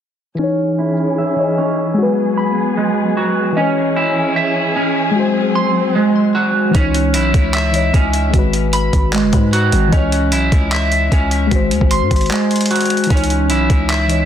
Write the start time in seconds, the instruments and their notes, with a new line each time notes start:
0.35 synth keys E3
0.39 string section E3 C#4 G#4, clean electric guitar C#4, synth keys D#4
0.43 synth keys C#5
0.79 clean electric guitar E4
1.18 clean electric guitar E5
1.36 synth keys E3 D#5
1.40 synth keys C#5
1.58 clean electric guitar C#4
1.94 string section F#3 B3 G#4, synth keys G#3
1.98 synth keys F#4
2.02 synth keys B4
2.37 clean electric guitar B5
2.77 clean electric guitar G#3
3.17 clean electric guitar F#4
3.52 synth keys E3
3.56 string section E3 C#4 G#4, clean electric guitar C#4, synth keys D#5
3.60 synth keys C#5
3.96 clean electric guitar E4
4.36 clean electric guitar E5
4.76 clean electric guitar C#4
5.11 synth keys G#3
5.15 string section F#3 C4, synth keys F#4
5.20 synth keys C5
5.55 clean electric guitar C6
5.95 clean electric guitar G#3
6.35 clean electric guitar F#4
6.71 synth keys E3, clean electric guitar C#4, kick
6.75 808-style bass C#2, synth keys D#4, closed hi-hat
6.79 synth keys C#5
6.94 closed hi-hat
7.14 808-style bass B1, clean electric guitar E4, closed hi-hat
7.34 808-style bass C#2, kick, closed hi-hat
7.54 clean electric guitar E5, clap, closed hi-hat
7.72 synth keys E3 D#5, closed hi-hat
7.76 synth keys C#5
7.94 808-style bass C#2, clean electric guitar C#4, kick, closed hi-hat
8.13 closed hi-hat
8.30 808-style bass G#1, synth keys G#3, kick, closed hi-hat
8.34 synth keys F#4
8.38 synth keys B4
8.53 closed hi-hat
8.73 clean electric guitar B5, closed hi-hat
8.93 808-style bass G#1, kick, closed hi-hat
9.13 clean electric guitar G#3, clap, closed hi-hat
9.23 808-style bass F#1
9.33 808-style bass G#2, kick, closed hi-hat
9.53 clean electric guitar F#4, closed hi-hat
9.72 808-style bass G#1, closed hi-hat
9.88 synth keys E3
9.92 808-style bass C#2, clean electric guitar C#4, synth keys D#5, kick, closed hi-hat
9.96 synth keys C#5
10.12 closed hi-hat
10.32 808-style bass B1, clean electric guitar E4, closed hi-hat
10.52 808-style bass C#2, kick, closed hi-hat
10.72 clean electric guitar E5, clap, closed hi-hat
10.92 closed hi-hat
11.12 808-style bass C#2, clean electric guitar C#4, kick, closed hi-hat
11.31 closed hi-hat
11.47 synth keys G#3
11.51 808-style bass G#1, synth keys F#4, kick, closed hi-hat
11.55 synth keys C5
11.71 808-style bass D#2, closed hi-hat
11.81 808-style bass G#1, kick
11.91 clean electric guitar C6, closed hi-hat
12.01 808-style bass G#2
12.11 808-style bass G#1, kick, closed hi-hat
12.16 closed hi-hat
12.21 closed hi-hat
12.26 closed hi-hat
12.31 clean electric guitar G#3, clap, closed hi-hat
12.51 closed hi-hat
12.56 closed hi-hat
12.61 closed hi-hat
12.66 closed hi-hat
12.71 clean electric guitar F#4, closed hi-hat
12.76 closed hi-hat
12.81 closed hi-hat
12.86 closed hi-hat
12.90 closed hi-hat, open hi-hat
12.97 closed hi-hat
13.04 synth keys E3, closed hi-hat
13.10 808-style bass C#2, clean electric guitar C#4, synth keys D#4, kick, closed hi-hat
13.15 synth keys C#5, closed hi-hat
13.24 closed hi-hat
13.30 closed hi-hat
13.50 808-style bass B1, clean electric guitar E4, closed hi-hat
13.70 808-style bass C#2, kick, closed hi-hat
13.90 clean electric guitar E5, clap, closed hi-hat
14.07 synth keys E3 D#5, closed hi-hat
14.12 synth keys C#5